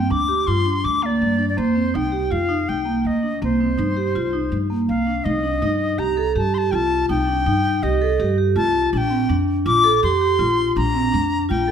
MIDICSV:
0, 0, Header, 1, 4, 480
1, 0, Start_track
1, 0, Tempo, 367647
1, 2054, Time_signature, 5, 2, 24, 8
1, 15295, End_track
2, 0, Start_track
2, 0, Title_t, "Flute"
2, 0, Program_c, 0, 73
2, 0, Note_on_c, 0, 79, 78
2, 144, Note_on_c, 0, 86, 84
2, 163, Note_off_c, 0, 79, 0
2, 614, Note_on_c, 0, 84, 83
2, 633, Note_off_c, 0, 86, 0
2, 1101, Note_on_c, 0, 86, 86
2, 1120, Note_off_c, 0, 84, 0
2, 1339, Note_on_c, 0, 77, 72
2, 1359, Note_off_c, 0, 86, 0
2, 1381, Note_on_c, 0, 74, 78
2, 1394, Note_off_c, 0, 77, 0
2, 1934, Note_off_c, 0, 74, 0
2, 1941, Note_on_c, 0, 74, 61
2, 2056, Note_on_c, 0, 72, 84
2, 2075, Note_off_c, 0, 74, 0
2, 2550, Note_on_c, 0, 79, 77
2, 2570, Note_off_c, 0, 72, 0
2, 3023, Note_on_c, 0, 77, 81
2, 3043, Note_off_c, 0, 79, 0
2, 3510, Note_on_c, 0, 79, 73
2, 3529, Note_off_c, 0, 77, 0
2, 4004, Note_on_c, 0, 75, 71
2, 4024, Note_off_c, 0, 79, 0
2, 4470, Note_off_c, 0, 75, 0
2, 4490, Note_on_c, 0, 72, 70
2, 5985, Note_off_c, 0, 72, 0
2, 6382, Note_on_c, 0, 77, 72
2, 6845, Note_on_c, 0, 75, 80
2, 6865, Note_off_c, 0, 77, 0
2, 7818, Note_on_c, 0, 82, 76
2, 7837, Note_off_c, 0, 75, 0
2, 8299, Note_off_c, 0, 82, 0
2, 8320, Note_on_c, 0, 81, 83
2, 8542, Note_on_c, 0, 84, 77
2, 8555, Note_off_c, 0, 81, 0
2, 8592, Note_on_c, 0, 81, 83
2, 8605, Note_off_c, 0, 84, 0
2, 8764, Note_on_c, 0, 79, 77
2, 8777, Note_off_c, 0, 81, 0
2, 8814, Note_on_c, 0, 81, 83
2, 8827, Note_off_c, 0, 79, 0
2, 9218, Note_off_c, 0, 81, 0
2, 9270, Note_on_c, 0, 79, 85
2, 10221, Note_on_c, 0, 75, 79
2, 10240, Note_off_c, 0, 79, 0
2, 10939, Note_off_c, 0, 75, 0
2, 11181, Note_on_c, 0, 81, 88
2, 11625, Note_off_c, 0, 81, 0
2, 11671, Note_on_c, 0, 81, 85
2, 11716, Note_on_c, 0, 79, 93
2, 11730, Note_off_c, 0, 81, 0
2, 12231, Note_off_c, 0, 79, 0
2, 12618, Note_on_c, 0, 86, 93
2, 13063, Note_off_c, 0, 86, 0
2, 13103, Note_on_c, 0, 84, 86
2, 14005, Note_off_c, 0, 84, 0
2, 14058, Note_on_c, 0, 82, 100
2, 14961, Note_off_c, 0, 82, 0
2, 15013, Note_on_c, 0, 79, 82
2, 15295, Note_off_c, 0, 79, 0
2, 15295, End_track
3, 0, Start_track
3, 0, Title_t, "Vibraphone"
3, 0, Program_c, 1, 11
3, 134, Note_on_c, 1, 62, 69
3, 346, Note_off_c, 1, 62, 0
3, 371, Note_on_c, 1, 67, 61
3, 584, Note_off_c, 1, 67, 0
3, 617, Note_on_c, 1, 65, 68
3, 827, Note_off_c, 1, 65, 0
3, 856, Note_on_c, 1, 62, 67
3, 1279, Note_off_c, 1, 62, 0
3, 1333, Note_on_c, 1, 58, 59
3, 1758, Note_off_c, 1, 58, 0
3, 1806, Note_on_c, 1, 62, 64
3, 2021, Note_off_c, 1, 62, 0
3, 2050, Note_on_c, 1, 58, 70
3, 2264, Note_off_c, 1, 58, 0
3, 2286, Note_on_c, 1, 60, 60
3, 2502, Note_off_c, 1, 60, 0
3, 2533, Note_on_c, 1, 63, 70
3, 2745, Note_off_c, 1, 63, 0
3, 2767, Note_on_c, 1, 67, 62
3, 2983, Note_off_c, 1, 67, 0
3, 3009, Note_on_c, 1, 65, 68
3, 3224, Note_off_c, 1, 65, 0
3, 3248, Note_on_c, 1, 63, 67
3, 3676, Note_off_c, 1, 63, 0
3, 3724, Note_on_c, 1, 58, 56
3, 4154, Note_off_c, 1, 58, 0
3, 4215, Note_on_c, 1, 62, 55
3, 4428, Note_off_c, 1, 62, 0
3, 4462, Note_on_c, 1, 58, 66
3, 4672, Note_off_c, 1, 58, 0
3, 4706, Note_on_c, 1, 60, 61
3, 4914, Note_off_c, 1, 60, 0
3, 4932, Note_on_c, 1, 63, 70
3, 5147, Note_off_c, 1, 63, 0
3, 5176, Note_on_c, 1, 67, 60
3, 5389, Note_off_c, 1, 67, 0
3, 5420, Note_on_c, 1, 65, 65
3, 5631, Note_off_c, 1, 65, 0
3, 5652, Note_on_c, 1, 63, 63
3, 6080, Note_off_c, 1, 63, 0
3, 6136, Note_on_c, 1, 58, 58
3, 6562, Note_off_c, 1, 58, 0
3, 6614, Note_on_c, 1, 62, 52
3, 6829, Note_off_c, 1, 62, 0
3, 6859, Note_on_c, 1, 63, 72
3, 7071, Note_off_c, 1, 63, 0
3, 7096, Note_on_c, 1, 62, 58
3, 7310, Note_off_c, 1, 62, 0
3, 7338, Note_on_c, 1, 63, 73
3, 7763, Note_off_c, 1, 63, 0
3, 7813, Note_on_c, 1, 67, 67
3, 8028, Note_off_c, 1, 67, 0
3, 8057, Note_on_c, 1, 69, 66
3, 8271, Note_off_c, 1, 69, 0
3, 8295, Note_on_c, 1, 67, 66
3, 8510, Note_off_c, 1, 67, 0
3, 8543, Note_on_c, 1, 67, 59
3, 8754, Note_off_c, 1, 67, 0
3, 8779, Note_on_c, 1, 65, 74
3, 9204, Note_off_c, 1, 65, 0
3, 9259, Note_on_c, 1, 63, 71
3, 9472, Note_off_c, 1, 63, 0
3, 9499, Note_on_c, 1, 62, 63
3, 9712, Note_off_c, 1, 62, 0
3, 9743, Note_on_c, 1, 63, 75
3, 10166, Note_off_c, 1, 63, 0
3, 10223, Note_on_c, 1, 67, 71
3, 10433, Note_off_c, 1, 67, 0
3, 10465, Note_on_c, 1, 69, 75
3, 10675, Note_off_c, 1, 69, 0
3, 10703, Note_on_c, 1, 67, 68
3, 10913, Note_off_c, 1, 67, 0
3, 10942, Note_on_c, 1, 67, 67
3, 11152, Note_off_c, 1, 67, 0
3, 11173, Note_on_c, 1, 65, 77
3, 11599, Note_off_c, 1, 65, 0
3, 11660, Note_on_c, 1, 62, 75
3, 11871, Note_off_c, 1, 62, 0
3, 11886, Note_on_c, 1, 60, 66
3, 12103, Note_off_c, 1, 60, 0
3, 12130, Note_on_c, 1, 62, 84
3, 12557, Note_off_c, 1, 62, 0
3, 12608, Note_on_c, 1, 65, 75
3, 12823, Note_off_c, 1, 65, 0
3, 12847, Note_on_c, 1, 69, 75
3, 13062, Note_off_c, 1, 69, 0
3, 13093, Note_on_c, 1, 67, 74
3, 13306, Note_off_c, 1, 67, 0
3, 13333, Note_on_c, 1, 67, 67
3, 13545, Note_off_c, 1, 67, 0
3, 13567, Note_on_c, 1, 65, 75
3, 13993, Note_off_c, 1, 65, 0
3, 14047, Note_on_c, 1, 62, 69
3, 14261, Note_off_c, 1, 62, 0
3, 14283, Note_on_c, 1, 60, 63
3, 14499, Note_off_c, 1, 60, 0
3, 14519, Note_on_c, 1, 62, 78
3, 14948, Note_off_c, 1, 62, 0
3, 15001, Note_on_c, 1, 65, 68
3, 15217, Note_off_c, 1, 65, 0
3, 15245, Note_on_c, 1, 69, 68
3, 15295, Note_off_c, 1, 69, 0
3, 15295, End_track
4, 0, Start_track
4, 0, Title_t, "Upright bass"
4, 0, Program_c, 2, 32
4, 136, Note_on_c, 2, 38, 77
4, 576, Note_off_c, 2, 38, 0
4, 619, Note_on_c, 2, 43, 75
4, 1057, Note_off_c, 2, 43, 0
4, 1101, Note_on_c, 2, 38, 76
4, 1538, Note_off_c, 2, 38, 0
4, 1587, Note_on_c, 2, 43, 69
4, 2022, Note_off_c, 2, 43, 0
4, 2060, Note_on_c, 2, 41, 84
4, 2498, Note_off_c, 2, 41, 0
4, 2545, Note_on_c, 2, 36, 85
4, 2981, Note_off_c, 2, 36, 0
4, 3019, Note_on_c, 2, 41, 77
4, 3458, Note_off_c, 2, 41, 0
4, 3509, Note_on_c, 2, 36, 68
4, 3943, Note_off_c, 2, 36, 0
4, 3978, Note_on_c, 2, 38, 64
4, 4418, Note_off_c, 2, 38, 0
4, 4466, Note_on_c, 2, 36, 88
4, 4902, Note_off_c, 2, 36, 0
4, 4941, Note_on_c, 2, 43, 82
4, 5380, Note_off_c, 2, 43, 0
4, 5424, Note_on_c, 2, 36, 74
4, 5862, Note_off_c, 2, 36, 0
4, 5898, Note_on_c, 2, 43, 74
4, 6339, Note_off_c, 2, 43, 0
4, 6383, Note_on_c, 2, 36, 71
4, 6822, Note_off_c, 2, 36, 0
4, 6861, Note_on_c, 2, 36, 81
4, 7301, Note_off_c, 2, 36, 0
4, 7340, Note_on_c, 2, 43, 77
4, 7781, Note_off_c, 2, 43, 0
4, 7814, Note_on_c, 2, 36, 72
4, 8258, Note_off_c, 2, 36, 0
4, 8298, Note_on_c, 2, 43, 77
4, 8740, Note_off_c, 2, 43, 0
4, 8781, Note_on_c, 2, 36, 76
4, 9222, Note_off_c, 2, 36, 0
4, 9258, Note_on_c, 2, 36, 77
4, 9700, Note_off_c, 2, 36, 0
4, 9742, Note_on_c, 2, 43, 78
4, 10181, Note_off_c, 2, 43, 0
4, 10222, Note_on_c, 2, 36, 82
4, 10661, Note_off_c, 2, 36, 0
4, 10700, Note_on_c, 2, 43, 80
4, 11140, Note_off_c, 2, 43, 0
4, 11173, Note_on_c, 2, 36, 76
4, 11616, Note_off_c, 2, 36, 0
4, 11657, Note_on_c, 2, 34, 86
4, 12097, Note_off_c, 2, 34, 0
4, 12135, Note_on_c, 2, 41, 82
4, 12576, Note_off_c, 2, 41, 0
4, 12608, Note_on_c, 2, 34, 86
4, 13052, Note_off_c, 2, 34, 0
4, 13095, Note_on_c, 2, 41, 86
4, 13535, Note_off_c, 2, 41, 0
4, 13567, Note_on_c, 2, 34, 79
4, 14010, Note_off_c, 2, 34, 0
4, 14055, Note_on_c, 2, 34, 85
4, 14494, Note_off_c, 2, 34, 0
4, 14540, Note_on_c, 2, 41, 82
4, 14976, Note_off_c, 2, 41, 0
4, 15021, Note_on_c, 2, 34, 78
4, 15295, Note_off_c, 2, 34, 0
4, 15295, End_track
0, 0, End_of_file